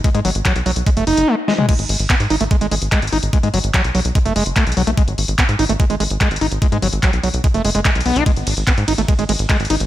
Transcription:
<<
  \new Staff \with { instrumentName = "Acid bass" } { \clef bass \time 4/4 \key gis \phrygian \tempo 4 = 146 gis16 gis16 fis16 r16 fis16 r16 fis16 r16 gis16 a16 dis'8 gis16 r16 gis16 gis16 | gis16 r8. b16 r16 dis'16 a16 gis16 gis16 gis16 r16 gis16 r16 dis'16 r16 | gis16 gis16 fis16 r16 fis16 r16 fis16 r16 gis16 a16 gis16 r16 a16 r16 fis16 a16 | gis16 r8. b16 r16 dis'16 a16 gis16 gis16 gis16 r16 gis16 r16 dis'16 r16 |
gis16 gis16 fis16 r16 fis16 r16 fis16 r16 gis16 a16 gis16 gis16 gis16 r16 b16 dis'16 | gis16 r8. b16 r16 dis'16 a16 gis16 gis16 gis16 r16 gis16 r16 dis'16 r16 | }
  \new Staff \with { instrumentName = "Analog synth bass" } { \clef bass \time 4/4 \key gis \phrygian r16 gis,16 gis,,16 gis,,16 r16 b,,16 b,,16 b,,16 r16 fis,,16 fis,,16 fis,,16 r4 | r16 gis,,16 gis,,16 gis,,16 r16 gis,16 gis,,16 gis,,16 r16 gis,,16 gis,,16 gis,,16 r16 gis,,16 gis,,16 gis,,16 | r16 gis,16 gis,,16 gis,,16 r16 b,,16 b,,16 b,,16 r16 fis,,16 fis,,16 fis,,16 r16 b,,16 b,,16 b,,16 | r16 gis,,16 gis,,16 gis,,16 r16 gis,16 gis,,16 gis,,16 r16 gis,,16 gis,,16 gis,,16 r16 gis,,16 gis,,16 gis,,16 |
r16 gis,16 gis,,16 gis,,16 r16 b,,16 b,,16 b,,16 r16 fis,,16 fis,,16 fis,,16 r16 b,,16 b,,16 b,,16 | r16 gis,,16 gis,,16 gis,,16 r16 gis,16 gis,,16 gis,,16 r16 gis,,16 gis,,16 gis,,16 r16 gis,,16 gis,,16 gis,,16 | }
  \new DrumStaff \with { instrumentName = "Drums" } \drummode { \time 4/4 <hh bd>16 hh16 hho16 hh16 <hc hh bd>16 hh16 hho16 hh16 <hh bd>16 hh16 hho16 hh16 r8 sn16 toml16 | <cymc hh bd>16 hh16 hho16 hh16 <hc hh bd>16 hh16 hho16 hh16 <hh bd>16 hh16 hho16 hh16 <hc hh bd>16 hh32 hh32 hho16 hh16 | <hh bd>16 hh16 hho16 hh16 <hc hh bd>16 hh16 hho16 hh16 <hh bd>16 hh16 hho16 hh16 <hc hh bd>16 hh32 hh32 hho16 hh16 | <hh bd>16 hh16 hho16 hh16 <hc hh bd>16 hh16 hho16 hh16 <hh bd>16 hh16 hho16 hh16 <hc hh bd>16 hh32 hh32 hho16 hh16 |
<hh bd>16 hh16 hho16 hh16 <hc hh bd>16 hh16 hho16 hh16 <hh bd>16 hh16 hho16 hh16 <hc hh bd>16 hh32 hh32 hho16 hh16 | <hh bd cymr>16 hh16 <hho cymr>16 hh16 <hc hh bd cymr>16 hh16 <hho cymr>16 hh16 <hh bd cymr>16 hh16 <hho cymr>16 hh16 <hc hh bd cymr>16 hh32 hh32 <hho cymr>16 hh16 | }
>>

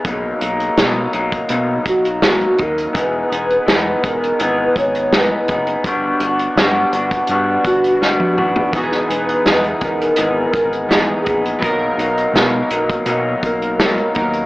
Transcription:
<<
  \new Staff \with { instrumentName = "Soft synth lead" } { \time 4/4 \key e \lydian \tempo 4 = 83 r2 r8 fis'4 ais'8 | b'4. ais'8 b'8 cis''8 b'8. r16 | r2 r8 fis'4 r8 | b'4. ais'8 ais'4 gis'8. r16 |
r2 r8 ais'4 r8 | }
  \new Staff \with { instrumentName = "Synth keys" } { \time 4/4 \key e \lydian r1 | r1 | r1 | <e b dis' fis' gis'>2. <e b dis' gis'>4 |
<fis b dis' ais'>2.~ <fis b dis' ais'>8 <fis b dis' ais'>8 | }
  \new Staff \with { instrumentName = "Clean electric guitar" } { \time 4/4 \key e \lydian <b, fis ais dis'>8 <fis ais dis'>8 <b, fis ais dis'>8 <fis ais dis'>8 <b, fis ais dis'>8 <fis ais dis'>8 <b, fis ais dis'>8 <fis ais dis'>8 | <e b dis' gis'>8 <b dis' gis'>8 <e b dis' gis'>8 <b dis' gis'>8 <e b dis' gis'>8 <b dis' gis'>8 <e b dis' gis'>8 <b dis' gis'>8 | <g b d' fis'>8 <b d' fis'>8 <g b d' fis'>8 <b d' fis'>8 <g b d' fis'>8 <b d' fis'>8 <g b d' fis'>8 <b d' fis'>8 | <e b dis' gis'>8 <b dis' gis'>8 <e b dis' gis'>8 <b dis' gis'>8 <e b dis' gis'>8 <b dis' gis'>8 <e b dis' gis'>8 <b dis' gis'>8 |
<b, fis ais dis'>8 <fis ais dis'>8 <b, fis ais dis'>8 <fis ais dis'>8 <b, fis ais dis'>8 <fis ais dis'>8 <b, fis ais dis'>8 <fis ais dis'>8 | }
  \new Staff \with { instrumentName = "Analog synth bass" } { \clef bass \time 4/4 \key e \lydian b,,8 b,,8 b,8 b,,8 b,8 b,,4 dis,8 | e,,8 e,,8 e,8 e,,8 gis,,8 gis,,4 fis,,8 | g,,8 g,,8 g,8 g,,8 g,8 g,,4 dis,,8 | e,,8 e,,8 e,8 e,,8 gis,,8 gis,,4 ais,,8 |
b,,8 b,,8 b,8 b,,8 b,8 b,,4 dis,8 | }
  \new DrumStaff \with { instrumentName = "Drums" } \drummode { \time 4/4 <hh bd>8 hh16 hh16 <hh sn>8 hh16 <hh bd>16 hh8 <hh bd>16 hh16 <hh sn>16 hh16 <hh bd>16 hh16 | <hh bd>8 hh16 hh16 <hh sn>8 <hh bd>16 hh16 hh8 <hh bd>16 hh16 <hh sn>8 <hh bd>16 hh16 | <hh bd>8 hh16 hh16 <hh sn>8 hh16 <hh bd>16 hh8 <hh bd>16 hh16 sn16 tommh16 toml16 tomfh16 | <hh bd>16 sn16 hh16 hh16 <hh sn>16 hh16 <hh bd>16 hh16 hh8 <hh bd>16 hh16 <hh sn>8 <hh bd>16 hh16 |
<hh bd>8 hh16 hh16 <hh sn>8 hh16 <hh bd>16 hh8 <hh bd>16 hh16 <hh sn>16 hh16 <hh bd>16 hh16 | }
>>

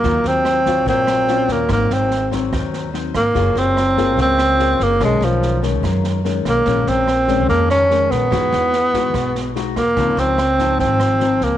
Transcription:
<<
  \new Staff \with { instrumentName = "Tenor saxophone" } { \time 4/4 \key des \major \tempo 4 = 145 bes8 c'4. c'4. bes8 | bes8 c'4 r2 bes8~ | bes8 c'4. c'4. bes8 | aes8 f4 r2 bes8~ |
bes8 c'4. bes8 des'4 ces'8~ | ces'2. r8 bes8~ | bes8 c'4. c'4. bes8 | }
  \new Staff \with { instrumentName = "Nylon-string guitar" } { \clef bass \time 4/4 \key des \major << { <ges f'>4. <ges f'>4. <ges des' f'>4 | <ges c' ees'>4 r8 <ges c' ees'>4. <ges c' ees'>8 r8 | <bes f' aes'>4 r8 <bes f' aes'>4. <bes f' aes'>4 | <ees aes des'>4. <ees aes des'>4. <ees aes des'>4 |
<ees aes des'>4 r8 <ees aes des'>4. <ees aes des'>4 | <gis dis' fis'>4 r8 <gis dis' fis'>4. <gis dis' fis'>8 r8 | <f c' ees'>4 r8 <f c' ees'>4. <f c' ees'>4 | } \\ { ees2 bes,2 | aes,2 ees2 | ges2 des2 | ces2 ges,2 |
bes,2 f,2 | e2 b,2 | des2 aes,2 | } >> }
  \new Staff \with { instrumentName = "Upright bass" } { \clef bass \time 4/4 \key des \major ees,8 ees,4. bes,,4. ees,8 | aes,,8 aes,,4. ees,4. aes,,8 | ges,,8 ges,,4. des,4. ges,,8 | ces,8 ces,4. ges,4. ces,8 |
bes,,8 bes,,4. f,4. bes,,8 | e,8 e,4. b,,4. e,8 | des,8 des,4. aes,,4. des,8 | }
  \new DrumStaff \with { instrumentName = "Drums" } \drummode { \time 4/4 <bd sn>8 sn8 <ss sn>8 <bd sn>8 <bd sn>8 <ss sn>8 sn8 <bd sn>8 | <bd ss sn>8 sn8 sn8 <bd sn>8 <bd ss sn>8 sn8 sn8 <bd ss sn>8 | <bd sn>8 sn8 <ss sn>8 <bd sn>8 <bd sn>8 <ss sn>8 sn8 <bd sn>8 | <bd ss sn>8 sn8 sn8 <bd sn>8 <bd ss sn>8 sn8 sn8 <bd ss sn>8 |
<bd sn>8 sn8 <ss sn>8 <bd sn>8 <bd sn>8 <ss sn>8 sn8 <bd sn>8 | <bd ss sn>8 sn8 sn8 <bd sn>8 <bd ss sn>8 sn8 sn8 <bd ss sn>8 | <bd sn>8 sn8 <ss sn>8 <bd sn>8 <bd sn>8 <ss sn>8 sn8 <bd sn>8 | }
>>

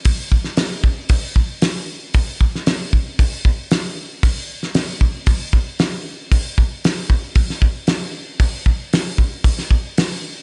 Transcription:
\new DrumStaff \with { instrumentName = "Drums" } \drummode { \time 4/4 \tempo 4 = 115 <hho bd>8 bd16 sn16 <hho sn>8 bd8 <hho bd>8 bd8 <hho sn>4 | <hho bd>8 bd16 sn16 <hho sn>8 bd8 <hho bd>8 bd8 <hho sn>4 | <hho bd>8. sn16 <hho sn>8 bd8 <hho bd>8 bd8 <hho sn>4 | <hho bd>8 bd8 <hho sn>8 bd8 <hho bd>16 sn16 bd8 <hho sn>4 |
<hho bd>8 bd8 <hho sn>8 bd8 <hho bd>16 sn16 bd8 <hho sn>4 | }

